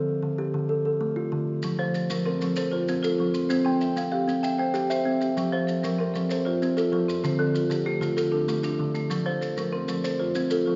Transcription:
Already playing: kalimba A4
0.23 kalimba D3
0.38 kalimba G4
0.54 kalimba D3
0.69 kalimba A4
0.85 kalimba A4
1.01 kalimba A3
1.16 kalimba F4
1.32 kalimba D3
1.63 kalimba F3, maracas
1.79 marimba F3, kalimba C5
1.94 marimba A4, maracas
2.10 kalimba F3, marimba A#4, maracas
2.26 marimba C4, kalimba A#4
2.41 kalimba F3, marimba A4, maracas
2.56 marimba A4, kalimba C5, maracas
2.72 marimba F4, kalimba C5
2.88 kalimba C4, maracas
3.03 marimba F4, kalimba A4, maracas
3.18 kalimba F3, marimba F4
3.34 marimba C4, maracas
3.49 kalimba C4, marimba C5, maracas
3.65 marimba C4, kalimba G5
3.81 marimba E5, maracas
3.96 kalimba C4, marimba F5, maracas
4.12 marimba G4, kalimba F5
4.28 kalimba C4, maracas
4.43 marimba E5, kalimba G5, maracas
4.58 marimba C5, kalimba G5
4.74 kalimba G4, maracas
4.90 marimba C5, kalimba E5, maracas
5.05 kalimba C4, marimba C5
5.21 marimba G4, maracas
5.37 kalimba F3, marimba G5, maracas
5.52 marimba F3, kalimba C5
5.67 marimba A4, maracas
5.83 kalimba F3, marimba A#4, maracas
5.99 marimba C4, kalimba A#4
6.14 kalimba F3, marimba A4, maracas
6.29 marimba A4, kalimba C5, maracas
6.45 marimba F4, kalimba C5
6.62 kalimba C4, maracas
6.77 marimba F4, kalimba A4, maracas
6.92 kalimba F3, marimba F4
7.08 marimba C4, maracas
7.24 kalimba D3, marimba C5, maracas
7.39 marimba D3, kalimba A4
7.55 marimba F4, maracas
7.70 kalimba D3, marimba G4, maracas
7.86 marimba A3, kalimba G4
8.01 kalimba D3, marimba F4, maracas
8.17 marimba F4, kalimba A4, maracas
8.31 marimba D4, kalimba A4
8.48 kalimba A3, maracas
8.63 marimba D4, kalimba F4, maracas
8.79 kalimba D3, marimba D4
8.94 marimba A3, maracas
9.10 kalimba F3, marimba A4, maracas
9.26 marimba F3, kalimba C5
9.41 marimba A4, maracas
9.57 kalimba F3, marimba A#4, maracas
9.72 marimba C4, kalimba A#4
9.88 kalimba F3, marimba A4, maracas
10.04 marimba A4, kalimba C5, maracas
10.19 marimba F4, kalimba C5
10.35 kalimba C4, maracas
10.50 marimba F4, kalimba A4, maracas
10.66 kalimba F3, marimba F4

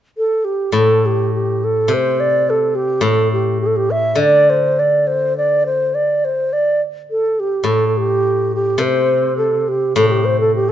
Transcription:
0.17 xiao A4
0.45 xiao G4
0.72 guzheng A2, xiao A4
1.06 xiao G4
1.34 xiao G4
1.64 xiao A4
1.88 guzheng C3
1.94 xiao C5
2.20 xiao D5
2.50 xiao A4
2.75 xiao G4
3.01 guzheng A2, xiao A4
3.33 xiao G4
3.61 xiao G4
3.66 xiao A4
3.76 xiao G4
3.91 xiao E5
4.15 guzheng D3, xiao D5
4.50 xiao C5
4.79 xiao D5
5.07 xiao C5
5.37 xiao D5
5.66 xiao C5
5.94 xiao D5
6.25 xiao C5
6.53 xiao D5
7.11 xiao A4
7.40 xiao G4
7.64 guzheng A2, xiao A4
7.87 xiao A4
7.97 xiao G4
8.55 xiao G4
8.78 guzheng C3
8.83 xiao C5
9.37 xiao A4
9.61 xiao A4
9.68 xiao G4
9.96 guzheng A2, xiao A4
10.08 xiao G4 A4
10.25 xiao C5
10.40 xiao A4
10.55 xiao G4
10.69 xiao A4

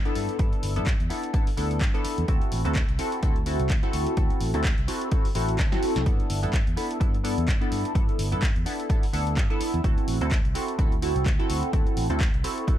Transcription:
0.05 analog polysynth B3 D4 E4 A4, closed hi-hat
0.15 fingered electric bass G2, open hi-hat
0.29 closed hi-hat
0.39 fingered electric bass G2, analog polysynth B3 D4 E4 A4, kick, closed hi-hat
0.53 muted fingered electric bass stroke, closed hi-hat
0.63 fingered electric bass G1, open hi-hat
0.76 fingered electric bass G2, analog polysynth B3 D4 E4 A4, closed hi-hat
0.87 kick, clap, closed hi-hat
1.00 fingered electric bass E2, closed hi-hat
1.10 analog polysynth B3 D4 E4 A4, open hi-hat
1.23 closed hi-hat
1.33 analog polysynth B3 D4 E4 A4, kick, closed hi-hat
1.47 muted fingered electric bass stroke, open hi-hat
1.57 fingered electric bass D2, analog polysynth B3 D4 E4 A4, open hi-hat
1.71 closed hi-hat
1.81 fingered electric bass G2, kick, clap, closed hi-hat
1.94 analog polysynth B3 D4 E4 A4, closed hi-hat
2.05 muted fingered electric bass stroke, open hi-hat
2.18 fingered electric bass E2, closed hi-hat
2.28 fingered electric bass D2, analog polysynth C4 E4 F#4 A4, kick, closed hi-hat
2.42 closed hi-hat
2.52 fingered electric bass A1, open hi-hat
2.65 fingered electric bass D2, analog polysynth C4 E4 F#4 A4, closed hi-hat
2.75 kick, clap, closed hi-hat
2.89 fingered electric bass C2, closed hi-hat
2.99 analog polysynth C4 E4 F#4 A4, open hi-hat
3.12 closed hi-hat
3.22 fingered electric bass D2, analog polysynth C4 E4 F#4 A4, kick, closed hi-hat
3.36 closed hi-hat
3.46 analog polysynth C4 E4 F#4 A4, open hi-hat
3.60 fingered electric bass C2, closed hi-hat
3.70 kick, clap, closed hi-hat
3.83 analog polysynth C4 E4 F#4 A4, closed hi-hat
3.93 fingered electric bass D2, open hi-hat
4.07 closed hi-hat
4.17 fingered electric bass D2, analog polysynth C4 E4 F#4 A4, kick, closed hi-hat
4.30 muted fingered electric bass stroke, closed hi-hat
4.41 fingered electric bass A1, open hi-hat
4.54 fingered electric bass D2, analog polysynth C4 E4 F#4 A4, closed hi-hat
4.64 kick, clap, closed hi-hat
4.78 fingered electric bass C2, closed hi-hat
4.88 analog polysynth C4 E4 F#4 A4, open hi-hat
5.01 closed hi-hat
5.11 analog polysynth C4 E4 F#4 A4, kick, closed hi-hat
5.25 muted fingered electric bass stroke, open hi-hat
5.35 fingered electric bass A1, analog polysynth C4 E4 F#4 A4, open hi-hat
5.49 closed hi-hat
5.59 fingered electric bass D2, kick, snare, clap, closed hi-hat
5.72 analog polysynth C4 E4 F#4 A4, snare, closed hi-hat
5.83 muted fingered electric bass stroke, open hi-hat
5.96 fingered electric bass C2, snare, closed hi-hat
6.06 fingered electric bass G2, analog polysynth B3 D4 E4 A4, kick, closed hi-hat
6.20 muted fingered electric bass stroke, closed hi-hat
6.30 fingered electric bass G1, open hi-hat
6.43 fingered electric bass G2, analog polysynth B3 D4 E4 A4, closed hi-hat
6.53 kick, clap, closed hi-hat
6.67 fingered electric bass E2, closed hi-hat
6.76 analog polysynth B3 D4 E4 A4, open hi-hat
6.91 closed hi-hat
7.00 fingered electric bass G2, analog polysynth B3 D4 E4 A4, kick, closed hi-hat
7.14 closed hi-hat
7.24 analog polysynth B3 D4 E4 A4, open hi-hat
7.38 fingered electric bass E2, closed hi-hat
7.48 kick, clap, closed hi-hat
7.61 analog polysynth B3 D4 E4 A4, closed hi-hat
7.72 fingered electric bass G2, open hi-hat
7.85 closed hi-hat
7.95 fingered electric bass G2, analog polysynth B3 D4 E4 A4, kick, closed hi-hat
8.09 muted fingered electric bass stroke, closed hi-hat
8.19 fingered electric bass G1, open hi-hat
8.32 fingered electric bass G2, analog polysynth B3 D4 E4 A4, closed hi-hat
8.42 kick, clap, closed hi-hat
8.56 fingered electric bass E2, closed hi-hat
8.66 analog polysynth B3 D4 E4 A4, open hi-hat
8.80 closed hi-hat
8.89 analog polysynth B3 D4 E4 A4, kick, closed hi-hat
9.03 muted fingered electric bass stroke, open hi-hat
9.13 fingered electric bass D2, analog polysynth B3 D4 E4 A4, open hi-hat
9.27 closed hi-hat
9.37 fingered electric bass G2, kick, clap, closed hi-hat
9.50 analog polysynth B3 D4 E4 A4, closed hi-hat
9.61 muted fingered electric bass stroke, open hi-hat
9.74 fingered electric bass E2, closed hi-hat
9.84 analog polysynth C4 E4 F#4 A4, kick, closed hi-hat
9.98 muted fingered electric bass stroke, closed hi-hat
10.08 fingered electric bass A1, open hi-hat
10.21 fingered electric bass D2, analog polysynth C4 E4 F#4 A4, closed hi-hat
10.31 kick, clap, closed hi-hat
10.45 fingered electric bass C2, closed hi-hat
10.55 analog polysynth C4 E4 F#4 A4, open hi-hat
10.68 closed hi-hat
10.78 fingered electric bass D2, analog polysynth C4 E4 F#4 A4, kick, closed hi-hat
10.92 closed hi-hat
11.02 analog polysynth C4 E4 F#4 A4, open hi-hat
11.16 fingered electric bass C2, closed hi-hat
11.26 fingered electric bass D2, kick, clap, closed hi-hat
11.39 analog polysynth C4 E4 F#4 A4, closed hi-hat
11.50 fingered electric bass D2, open hi-hat
11.63 closed hi-hat
11.73 fingered electric bass D2, analog polysynth C4 E4 F#4 A4, kick, closed hi-hat
11.87 muted fingered electric bass stroke, closed hi-hat
11.97 fingered electric bass A1, open hi-hat
12.10 fingered electric bass D2, analog polysynth C4 E4 F#4 A4, closed hi-hat
12.21 kick, clap, closed hi-hat
12.34 fingered electric bass C2, closed hi-hat
12.44 analog polysynth C4 E4 F#4 A4, open hi-hat
12.58 closed hi-hat
12.67 analog polysynth C4 E4 F#4 A4, kick, closed hi-hat

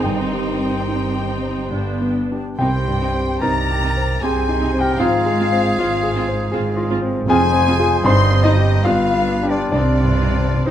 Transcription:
Already playing: french horn section D#3 C4, viola section C4 D#4
0.02 double bass section G1, timpani G2, cello section G2, grand piano G2 G4 G5, clarinet G4, oboe C5, violin section G5, flute section G5
0.33 grand piano G3
0.61 grand piano C4
0.88 grand piano D#4
1.15 grand piano G4
1.42 grand piano C5
1.71 grand piano G2, french horn section D3 B3, viola section B3 D4
2.01 grand piano B3
2.32 grand piano D4 G4
2.58 double bass section C2, grand piano C2 G4 G5, timpani C3, cello section C3, french horn section D#3 C4, viola section C4 D#4, clarinet G4, oboe C5, violin section G5, flute section G5
2.88 grand piano G2
3.01 viola section C4 D#4
3.14 grand piano C4
3.40 double bass section C2, cello section C3, viola section C4 D#4, grand piano D#4 A#4 A#5, clarinet A#4, oboe D5, violin section A#5, flute section A#5
3.71 grand piano G4
3.83 viola section C4 D#4
3.97 grand piano C5
4.21 double bass section C2, cello section C3, viola section C4 D#4, grand piano G4 G#5, clarinet G#4, oboe C5, flute section G#5, violin section G#5
4.25 grand piano G#4
4.49 grand piano D#4
4.60 viola section C4 D#4
4.74 grand piano C4, violin section G5
4.79 clarinet G4, grand piano G4 G5, oboe A#4, violin section G5, flute section G5
4.92 grand piano G5
4.97 double bass section G#1, cello section G#2, grand piano G#2 F4 F5, french horn section F3 C4, viola section C4 F4, clarinet F4, oboe G#4, flute section F5, violin section F5
5.26 grand piano G#3
5.39 viola section C4 F4
5.52 grand piano C4
5.78 double bass section G#1, cello section G#2, viola section C4 F4, grand piano F4
6.03 grand piano G#4
6.16 viola section C4 F4
6.28 grand piano C5
6.52 double bass section G#1, cello section G#2, viola section C4 F4, grand piano G#4
6.77 grand piano F4
6.91 viola section C4 F4
7.02 grand piano C4
7.27 double bass section F1, grand piano F2 G#4 G#5, cello section F2, french horn section F3 C4, viola section C4 F4, clarinet G#4, oboe C5, flute section G#5, violin section G#5
7.53 grand piano C4
7.67 viola section C4 F4
7.79 grand piano F4 G#4
8.03 double bass section G1, grand piano G2 C5 C6, cello section G2, french horn section D#3 C4, viola section C4 D#4, clarinet C5, oboe D#5, flute section C6, violin section C6
8.30 grand piano C4
8.43 viola section C4 D#4, clarinet D#4, grand piano D#4 D#5, oboe G4, flute section D#5, violin section D#5
8.57 grand piano D#4 G4
8.84 double bass section G1, grand piano G2 F4 F5, cello section G2, french horn section D3 B3, viola section B3 D4, clarinet F4, oboe B4, violin section F5, flute section F5
9.13 grand piano B3
9.29 viola section B3 D4
9.43 grand piano D4 G4
9.50 clarinet D4, grand piano D4 D5, oboe F4, violin section D5, flute section D5
9.71 grand piano C2 D4 D5, double bass section C2, cello section C3, timpani C3, french horn section D#3 C4, viola section C4 D#4, clarinet D4, oboe F4, flute section D5, violin section D5
9.82 timpani C3
10.00 grand piano G2, timpani C3
10.10 timpani C3
10.21 viola section C4 D#4
10.27 timpani C3
10.35 timpani C3, grand piano C4
10.44 timpani C3
10.54 timpani C3
10.62 timpani C3, grand piano C5
10.66 double bass section C2, grand piano C4 D#4, viola section C4, oboe D#4, violin section C5

